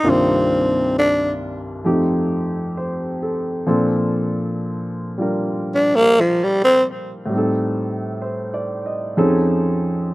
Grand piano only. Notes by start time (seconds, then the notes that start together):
0.04 C2 G2 D#3 A#3 D4 F4
1.84 F2 F3 A3 D#4 G4
2.77 C5
3.23 A4
3.66 A#2 F3 C4 D4 A4
5.18 G3 D4 F4
5.22 A#4
7.26 A2 G3
7.32 C4 D#4
7.38 A4
8.22 C5
8.54 D5
8.86 D#5
9.17 F2 F3 C#4 D#4 G#4 A4